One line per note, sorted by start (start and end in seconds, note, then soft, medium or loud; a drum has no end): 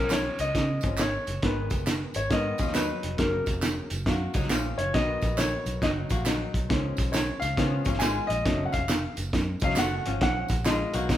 0.00 0.28 B1 medium
0.00 0.81 F3 medium
0.00 0.82 G#3 medium
0.00 0.82 C#4 medium
0.00 0.10 A#4 loud
0.10 0.38 C#5 medium
0.10 snare loud
0.10 clap medium
0.10 closed hi-hat medium
0.10 tambourine medium
0.39 0.51 C#2 medium
0.39 1.01 D#5 loud
0.39 closed hi-hat medium
0.39 tambourine medium
0.55 0.76 C#3 loud
0.55 kick medium
0.55 snare loud
0.55 closed hi-hat medium
0.55 tambourine soft
0.81 1.16 G#1 medium
0.81 0.97 F3 soft
0.81 0.98 G#3 soft
0.81 0.98 C#4 medium
0.81 kick loud
0.81 closed hi-hat medium
0.81 tambourine medium
0.97 1.45 C#5 medium
0.97 snare loud
0.97 clap loud
0.97 closed hi-hat medium
0.97 tambourine medium
1.27 1.39 F#1 medium
1.27 closed hi-hat medium
1.27 tambourine soft
1.42 1.71 G#1 loud
1.42 2.28 D#3 medium
1.42 2.29 G#3 medium
1.42 2.30 B3 medium
1.42 1.85 B4 medium
1.42 kick loud
1.42 snare loud
1.42 closed hi-hat loud
1.70 2.04 F#1 medium
1.70 kick medium
1.70 closed hi-hat medium
1.70 tambourine medium
1.87 snare loud
1.87 clap medium
1.87 closed hi-hat medium
1.87 tambourine medium
2.14 2.27 G#1 medium
2.14 2.32 C#5 loud
2.14 closed hi-hat medium
2.14 tambourine medium
2.30 2.52 G#2 loud
2.30 2.55 D#3 medium
2.30 2.58 D#3 medium
2.30 2.56 G#3 soft
2.30 2.56 B3 medium
2.30 2.58 B3 medium
2.30 2.77 D#5 loud
2.30 kick medium
2.30 snare loud
2.30 closed hi-hat medium
2.30 tambourine soft
2.58 2.92 D#2 medium
2.58 2.75 F3 medium
2.58 2.75 C#4 medium
2.58 kick medium
2.58 closed hi-hat medium
2.58 tambourine medium
2.67 snare soft
2.74 3.17 F#3 medium
2.74 3.17 D#4 medium
2.74 3.15 B4 medium
2.74 snare loud
2.74 clap medium
2.74 closed hi-hat medium
2.74 tambourine medium
3.03 3.15 F1 medium
3.03 closed hi-hat medium
3.17 3.40 F#1 medium
3.17 3.86 C#3 medium
3.17 3.87 F#3 medium
3.17 3.87 A#3 medium
3.17 3.44 A#4 medium
3.17 kick loud
3.17 snare loud
3.17 closed hi-hat loud
3.17 tambourine soft
3.46 3.80 F1 medium
3.46 kick medium
3.46 closed hi-hat medium
3.46 tambourine soft
3.62 snare loud
3.62 clap medium
3.62 closed hi-hat medium
3.62 tambourine medium
3.90 4.03 F#1 medium
3.90 closed hi-hat medium
3.90 tambourine medium
4.06 4.27 F#2 loud
4.06 4.34 A#3 medium
4.06 4.34 F#4 medium
4.06 kick medium
4.06 snare loud
4.06 closed hi-hat medium
4.06 tambourine soft
4.34 4.47 C#2 loud
4.34 4.50 F#3 medium
4.34 4.50 D#4 medium
4.34 kick loud
4.34 closed hi-hat medium
4.34 tambourine medium
4.42 snare soft
4.50 4.71 A#1 medium
4.50 4.93 F3 medium
4.50 4.93 C#4 medium
4.50 snare loud
4.50 clap loud
4.50 closed hi-hat medium
4.50 tambourine medium
4.78 4.90 F#1 medium
4.78 4.94 C#5 loud
4.78 closed hi-hat medium
4.94 5.15 B1 loud
4.94 6.66 D#3 medium
4.94 6.66 F#3 medium
4.94 6.66 B3 medium
4.94 5.35 D#5 loud
4.94 kick loud
4.94 snare loud
4.94 closed hi-hat loud
4.94 tambourine soft
5.21 5.55 A#1 medium
5.21 kick medium
5.21 closed hi-hat medium
5.21 tambourine soft
5.38 5.83 C#5 medium
5.38 snare loud
5.38 clap medium
5.38 closed hi-hat medium
5.38 tambourine medium
5.66 5.78 B1 medium
5.66 closed hi-hat medium
5.66 tambourine medium
5.82 6.03 F#1 medium
5.82 6.09 F#3 medium
5.82 6.09 D#4 medium
5.82 5.89 D#5 medium
5.82 kick medium
5.82 snare loud
5.82 closed hi-hat medium
5.82 tambourine soft
6.09 6.43 A#1 medium
6.09 6.26 A#3 medium
6.09 6.25 F#4 medium
6.09 kick medium
6.09 closed hi-hat medium
6.09 tambourine medium
6.26 6.68 F#3 medium
6.26 6.68 D#4 medium
6.26 snare medium
6.26 clap medium
6.26 closed hi-hat medium
6.26 tambourine loud
6.54 6.70 B1 medium
6.54 kick medium
6.54 closed hi-hat medium
6.54 tambourine soft
6.69 6.91 C#2 loud
6.69 7.56 F3 medium
6.69 7.57 G#3 medium
6.69 7.57 C#4 medium
6.69 kick loud
6.69 snare loud
6.69 closed hi-hat loud
6.97 7.31 B1 medium
6.97 kick medium
6.97 closed hi-hat medium
6.97 tambourine medium
7.12 7.39 C#5 medium
7.12 snare loud
7.12 clap medium
7.12 closed hi-hat medium
7.12 tambourine medium
7.40 7.54 C#2 loud
7.40 8.02 F5 loud
7.40 closed hi-hat medium
7.40 tambourine medium
7.57 7.78 C#3 loud
7.57 7.85 D#3 medium
7.57 7.83 F3 medium
7.57 7.83 G#3 soft
7.57 7.84 B3 medium
7.57 7.83 C#4 medium
7.57 kick medium
7.57 snare loud
7.57 closed hi-hat medium
7.57 tambourine soft
7.85 8.19 G#1 medium
7.85 8.01 F3 medium
7.85 8.01 C#4 medium
7.85 kick loud
7.85 closed hi-hat medium
7.85 tambourine medium
7.94 snare soft
7.99 8.44 F4 medium
7.99 8.29 G#5 loud
7.99 snare loud
7.99 clap loud
7.99 closed hi-hat medium
7.99 tambourine loud
8.03 8.44 G#3 medium
8.27 8.41 A#1 medium
8.27 8.61 D#5 loud
8.27 closed hi-hat medium
8.27 tambourine soft
8.45 8.66 F#1 loud
8.45 8.78 F#3 medium
8.45 8.78 A3 medium
8.45 8.79 C#4 medium
8.45 kick loud
8.45 snare loud
8.45 closed hi-hat loud
8.45 tambourine soft
8.65 8.74 F#5 medium
8.72 9.06 F1 medium
8.72 9.14 F5 loud
8.72 kick medium
8.72 closed hi-hat medium
8.72 tambourine soft
8.89 snare loud
8.89 clap medium
8.89 closed hi-hat medium
8.89 tambourine medium
9.17 9.29 F#1 medium
9.17 closed hi-hat medium
9.17 tambourine medium
9.33 9.54 F#2 loud
9.33 kick medium
9.33 snare loud
9.33 closed hi-hat medium
9.33 tambourine soft
9.60 9.74 C#2 medium
9.60 9.76 F#3 medium
9.60 9.77 F#3 medium
9.60 9.76 A3 soft
9.60 9.76 C#4 medium
9.60 9.77 D#4 medium
9.60 kick loud
9.60 closed hi-hat medium
9.60 tambourine medium
9.64 9.79 F5 loud
9.70 snare soft
9.76 9.98 F#1 loud
9.76 10.05 A3 medium
9.76 10.05 F#4 medium
9.76 10.19 F#5 loud
9.76 snare loud
9.76 clap loud
9.76 closed hi-hat medium
9.76 tambourine loud
10.06 10.18 G#1 medium
10.06 10.48 F3 medium
10.06 10.48 C#4 medium
10.06 closed hi-hat medium
10.21 10.42 B1 loud
10.21 10.63 F#5 loud
10.21 kick loud
10.21 snare loud
10.21 closed hi-hat loud
10.48 10.82 A#1 medium
10.48 kick loud
10.48 closed hi-hat medium
10.48 tambourine medium
10.65 10.92 G#3 medium
10.65 10.92 F4 medium
10.65 11.06 D#5 medium
10.65 snare loud
10.65 clap medium
10.65 closed hi-hat medium
10.65 tambourine medium
10.92 11.06 B1 medium
10.92 11.17 F#3 medium
10.92 11.09 A#3 medium
10.92 11.17 B3 medium
10.92 11.17 D#4 medium
10.92 11.09 F#4 medium
10.92 closed hi-hat medium
10.92 tambourine medium
11.09 11.17 B2 loud
11.09 11.17 F#3 medium
11.09 11.17 D#4 medium
11.09 kick medium
11.09 snare loud
11.09 closed hi-hat medium
11.09 tambourine soft